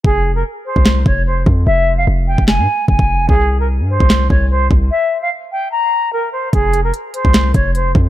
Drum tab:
HH |----------------|----------------|----------------|----------------|
CP |--------x-------|--------x-------|--------x-------|----------------|
SD |--------o-------|--------o-------|--------o-------|----------------|
BD |o------o--o---o-|-------o----oo--|o------o--o---o-|----------------|

HH |x-x-x-x-x-x-x---|
CP |--------x-------|
SD |--------o-------|
BD |o------o--o---o-|